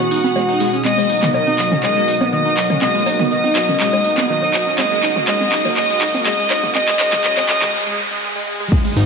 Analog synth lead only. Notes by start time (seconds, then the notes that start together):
Already playing: F#4
0.85 D#5
1.34 D#5
1.83 D#5
2.32 D#5
2.82 D#5
3.31 D#5
3.80 D#5
4.29 D#5
4.78 D#5
5.28 D#5
5.77 D#5
6.26 D#5
6.75 D#5
7.00 D#5
7.24 D#5
7.49 D#5